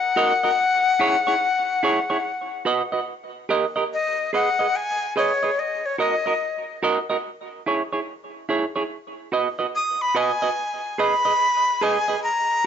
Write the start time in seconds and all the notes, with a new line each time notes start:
Already playing: F#5
0.16 F#4 A#4 D#5
0.43 F#4 A#4 D#5
0.99 E4 G#4 C#5
1.27 E4 G#4 C#5
1.83 E4 G#4 C#5
2.10 E4 G#4 C#5
2.65 F#4 B4 D#5
2.92 F#4 B4 D#5
3.49 G4 A#4 D#5
3.76 G4 A#4 D#5
3.94 D#5
4.33 G#4 B4 D#5 F#5
4.59 G#4 B4 D#5
4.76 G#5
5.16 G#4 B4 C#5 D#5
5.43 G#4 B4 D#5
5.59 D#5
5.86 C#5
5.98 F#4 A#4 D#5
6.26 F#4 A#4 D#5
6.83 F#4 A#4 D#5
7.10 F#4 A#4 D#5
7.66 E4 G#4 C#5
7.93 E4 G#4 C#5
8.49 E4 G#4 C#5
8.76 E4 G#4 C#5
9.32 F#4 B4 D#5
9.59 F#4 B4 D#5
9.75 D#6
10.01 B5
10.15 F#4 B4 D#5 G#5
10.42 F#4 B4 D#5
10.98 G#4 B4 D#5 B5
11.25 G#4 B4 D#5
11.81 G#4 B4 D#5 G#5
12.08 G#4 B4 D#5
12.24 A#5